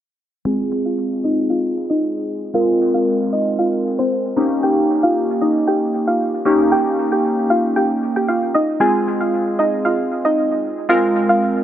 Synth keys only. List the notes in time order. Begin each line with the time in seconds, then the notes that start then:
0.45 G#3 C4 F4 G#4
2.54 G#3 C4 F4 A#4
4.37 A#3 C#4 D#4 G4
6.45 A#3 C#4 D#4 G4
8.80 G#3 C4 F4 G#4
10.89 G#3 C4 F4 A#4